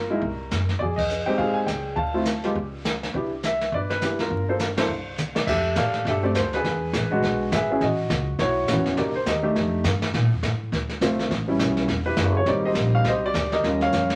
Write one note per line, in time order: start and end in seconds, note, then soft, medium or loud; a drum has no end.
0.00 0.18 G1 medium
0.00 0.20 F4 medium
0.00 0.64 A#4 medium
0.10 0.21 G#3 medium
0.10 0.20 A#3 medium
0.10 0.21 D#4 medium
0.10 0.21 E4 medium
0.22 0.49 C2 medium
0.22 brush sweep soft
0.22 kick soft
0.51 0.78 F#2 medium
0.51 snare medium
0.51 hi-hat pedal soft
0.69 snare soft
0.79 1.24 F2 medium
0.79 1.36 G#4 medium
0.79 0.84 D5 medium
0.79 brush sweep soft
0.79 kick soft
0.96 1.27 D#5 medium
0.96 kick medium
0.96 ride medium
1.09 hi-hat pedal medium
1.26 1.65 G#3 medium
1.26 1.65 C4 medium
1.26 1.66 D#4 medium
1.26 1.66 G4 medium
1.26 1.39 G5 medium
1.26 muted upright bass stroke soft
1.38 1.65 G#2 medium
1.38 1.94 G#4 medium
1.38 1.56 F5 medium
1.38 brush sweep soft
1.38 kick soft
1.54 1.59 G#5 medium
1.66 1.94 C#2 medium
1.66 1.97 G5 medium
1.66 snare medium
1.66 hi-hat pedal medium
1.96 2.52 D2 medium
1.96 2.52 F5 medium
1.96 2.51 A5 medium
1.96 brush sweep soft
1.96 kick soft
2.14 2.25 A3 medium
2.14 2.25 C4 medium
2.14 2.25 E4 medium
2.14 2.25 F4 medium
2.25 snare soft
2.25 hi-hat pedal soft
2.44 2.54 G#3 medium
2.44 2.54 B3 medium
2.44 2.55 F4 medium
2.44 2.55 G4 medium
2.44 snare soft
2.55 3.11 C#2 medium
2.55 brush sweep soft
2.55 kick soft
2.85 snare medium
2.85 hi-hat pedal soft
3.03 snare soft
3.14 3.69 C2 medium
3.14 3.30 B3 medium
3.14 3.30 D4 medium
3.14 3.30 E4 soft
3.14 3.30 G4 medium
3.14 brush sweep soft
3.14 kick soft
3.43 3.71 E5 medium
3.43 snare soft
3.43 hi-hat pedal medium
3.61 snare soft
3.72 4.28 G1 medium
3.72 3.89 B4 medium
3.72 3.79 D5 medium
3.72 brush sweep soft
3.72 kick soft
3.90 4.17 B4 medium
3.90 snare soft
4.01 4.18 B3 medium
4.01 4.18 D4 medium
4.01 4.18 E4 medium
4.01 4.18 G4 medium
4.01 snare medium
4.01 hi-hat pedal soft
4.19 4.48 F4 medium
4.19 4.47 A#4 medium
4.19 snare soft
4.30 4.86 G1 medium
4.30 brush sweep soft
4.30 kick soft
4.49 4.59 A#3 medium
4.49 4.59 D4 medium
4.49 4.59 F4 medium
4.49 4.59 A4 medium
4.49 4.54 C5 medium
4.59 4.65 A#4 medium
4.59 snare soft
4.59 hi-hat pedal medium
4.77 4.88 A#3 medium
4.77 4.88 D4 medium
4.77 4.88 E4 medium
4.77 4.88 A4 medium
4.77 5.15 C5 medium
4.77 snare medium
4.77 ride medium
4.88 5.32 C2 medium
4.88 brush sweep soft
5.18 hi-hat pedal medium
5.18 mid tom soft
5.35 5.46 C3 medium
5.35 5.40 D5 medium
5.35 snare medium
5.46 5.75 F2 medium
5.46 6.03 G4 medium
5.46 5.78 A4 medium
5.46 5.74 E5 loud
5.46 brush sweep soft
5.46 kick medium
5.46 snare soft
5.46 crash medium
5.76 6.04 A2 medium
5.76 6.07 A4 medium
5.76 6.23 D5 medium
5.76 6.07 F5 medium
5.76 kick soft
5.76 snare medium
5.76 hi-hat pedal medium
5.94 snare soft
6.05 6.34 G2 medium
6.05 6.62 A4 medium
6.05 6.12 E5 medium
6.05 brush sweep soft
6.05 kick soft
6.05 snare soft
6.09 6.22 G4 medium
6.23 6.34 A3 medium
6.23 6.34 C4 medium
6.23 6.34 D4 medium
6.23 6.34 G4 medium
6.23 6.29 D5 medium
6.35 6.63 D2 medium
6.35 6.53 C5 medium
6.35 kick soft
6.35 snare medium
6.35 hi-hat pedal medium
6.53 7.10 D4 medium
6.53 7.38 G#4 medium
6.53 7.37 B4 medium
6.53 snare soft
6.64 6.93 E2 medium
6.64 brush sweep soft
6.64 kick soft
6.64 snare soft
6.93 7.22 A1 medium
6.93 kick soft
6.93 snare medium
6.93 hi-hat pedal medium
7.11 7.49 G#3 medium
7.11 7.50 B3 medium
7.11 7.50 D4 medium
7.11 7.50 F#4 medium
7.22 7.51 B1 medium
7.22 brush sweep soft
7.22 kick soft
7.22 snare soft
7.52 7.80 G#1 medium
7.52 7.70 G#4 medium
7.52 7.80 B4 medium
7.52 7.82 E5 medium
7.52 kick soft
7.52 snare medium
7.52 hi-hat pedal medium
7.70 7.80 B3 medium
7.70 7.80 C#4 medium
7.70 7.81 E4 medium
7.70 7.81 G#4 medium
7.81 8.09 A1 medium
7.81 8.37 F#4 medium
7.81 8.25 D#5 medium
7.81 brush sweep soft
7.81 kick soft
7.81 snare soft
8.10 8.38 C#2 loud
8.10 kick soft
8.10 snare medium
8.10 hi-hat pedal medium
8.39 8.67 B1 medium
8.39 8.68 E4 medium
8.39 8.68 F#4 medium
8.39 9.00 C#5 medium
8.39 brush sweep soft
8.39 kick soft
8.39 snare soft
8.68 8.79 A1 medium
8.68 8.98 B3 medium
8.68 8.98 C#4 medium
8.68 8.98 E4 medium
8.68 8.98 F#4 medium
8.68 kick soft
8.68 snare medium
8.68 hi-hat pedal medium
8.77 8.86 F#1 soft
8.86 8.96 E1 medium
8.86 snare soft
8.97 9.13 C2 medium
8.97 9.13 A#3 medium
8.97 9.13 D4 medium
8.97 9.13 D#4 medium
8.97 9.13 G4 medium
8.97 9.26 A#4 medium
8.97 9.02 D5 medium
8.97 brush sweep medium
8.97 kick soft
8.97 snare soft
9.14 9.27 C5 medium
9.14 muted upright bass stroke soft
9.26 9.55 D#2 medium
9.26 9.42 G4 medium
9.26 9.54 A#4 medium
9.26 9.54 D#5 medium
9.26 kick soft
9.26 snare medium
9.26 hi-hat pedal soft
9.43 9.82 A3 medium
9.43 9.82 D4 medium
9.43 9.82 D#4 medium
9.43 9.82 G4 medium
9.55 9.83 F2 medium
9.55 brush sweep soft
9.55 kick soft
9.55 snare soft
9.84 10.13 G2 medium
9.84 kick soft
9.84 snare medium
9.84 hi-hat pedal medium
10.02 snare medium
10.14 10.23 A#2 medium
10.14 brush sweep medium
10.14 kick soft
10.14 snare soft
10.23 10.33 A2 medium
10.34 10.42 F2 medium
10.43 10.71 A2 medium
10.43 kick soft
10.43 snare medium
10.43 hi-hat pedal soft
10.72 11.00 D2 medium
10.72 brush sweep soft
10.72 kick soft
10.72 snare soft
10.89 snare soft
11.01 11.30 C2 medium
11.01 11.31 A3 medium
11.01 11.31 C4 medium
11.01 11.31 D4 medium
11.01 11.31 F4 medium
11.01 kick soft
11.01 snare medium
11.01 hi-hat pedal medium
11.19 snare soft
11.31 11.59 A1 medium
11.31 brush sweep medium
11.31 kick soft
11.31 snare soft
11.48 11.86 G3 medium
11.48 11.86 B3 medium
11.48 11.87 C#4 medium
11.48 11.87 E4 medium
11.59 11.87 B1 loud
11.59 kick soft
11.59 snare medium
11.59 hi-hat pedal medium
11.77 snare soft
11.88 12.16 E1 medium
11.88 brush sweep soft
11.88 kick soft
11.88 snare soft
12.06 12.45 E4 medium
12.06 12.45 G4 medium
12.06 12.33 B4 medium
12.16 12.45 F#1 medium
12.16 kick soft
12.16 snare medium
12.16 hi-hat pedal medium
12.37 12.48 C#5 medium
12.46 12.74 G#1 medium
12.46 13.27 G3 medium
12.46 13.27 A#3 medium
12.46 13.27 C4 medium
12.46 13.28 D#4 medium
12.46 12.65 G4 medium
12.46 12.53 D5 medium
12.46 brush sweep soft
12.46 kick soft
12.46 snare soft
12.65 13.07 G4 medium
12.65 13.07 C5 medium
12.65 12.95 D#5 medium
12.75 13.04 A#1 medium
12.75 kick soft
12.75 snare medium
12.75 hi-hat pedal medium
12.95 13.06 F5 loud
13.05 13.33 C2 medium
13.05 13.24 G4 medium
13.05 13.61 C5 medium
13.05 13.23 D#5 loud
13.05 brush sweep soft
13.05 kick soft
13.05 snare soft
13.25 13.52 G4 medium
13.25 13.54 D5 loud
13.34 13.63 D2 loud
13.34 kick soft
13.34 snare medium
13.34 hi-hat pedal medium
13.52 14.07 G4 medium
13.52 13.81 A#4 medium
13.52 13.80 D#5 loud
13.52 snare soft
13.63 13.92 D#2 medium
13.63 14.15 G3 soft
13.63 14.15 A#3 soft
13.63 14.15 C#4 soft
13.63 14.15 F4 medium
13.63 brush sweep soft
13.63 kick soft
13.63 snare soft
13.81 14.15 A#4 medium
13.81 14.15 C#5 medium
13.81 14.15 F5 loud
13.81 snare soft
13.92 14.15 F2 medium
13.92 snare soft
13.92 hi-hat pedal medium
14.10 snare medium